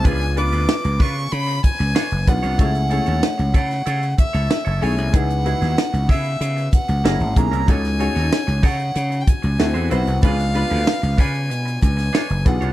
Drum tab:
HH |xxxx-xoxxxxx-xxx|xxxx-xxxxxxx-xox|xxxx-xoxxxxx-xxx|xxxx-xoxxxxx-xxx|
SD |----o-------o---|----o--o----o---|---oo-------o---|-o-oo-------o---|
BD |o-----o---o---o-|o-----o---o-----|o-----o---o---o-|o-----o---o-----|

HH |xxxx-xoxxxxx-xxx|
SD |-o--o------oo---|
BD |o-----o---o---o-|